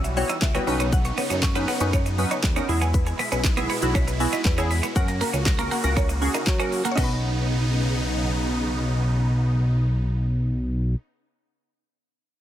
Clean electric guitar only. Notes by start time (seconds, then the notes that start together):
0.04 muted clean electric guitar stroke
0.29 D#4
0.55 C#4
0.67 muted clean electric guitar stroke
0.80 B3
1.05 muted clean electric guitar stroke
1.18 B3
1.30 C#4
1.43 muted clean electric guitar stroke
1.56 B3
1.68 B3
1.93 C#4
2.06 muted clean electric guitar stroke
2.31 D#4
2.56 C#4
2.69 muted clean electric guitar stroke
2.81 B3
3.07 muted clean electric guitar stroke
3.19 B3
3.32 C#4
3.45 muted clean electric guitar stroke
3.57 B3
3.70 B3
3.95 C#4
4.08 muted clean electric guitar stroke
4.33 D#4
4.58 C#4
4.71 muted clean electric guitar stroke
4.83 B3
5.08 muted clean electric guitar stroke
5.21 A#3
5.34 C#4
5.46 muted clean electric guitar stroke
5.59 A#3
5.71 A#3
5.97 C#4
6.09 muted clean electric guitar stroke
6.34 D#4
6.60 C#4
6.72 muted clean electric guitar stroke
6.85 A#3
6.97 B3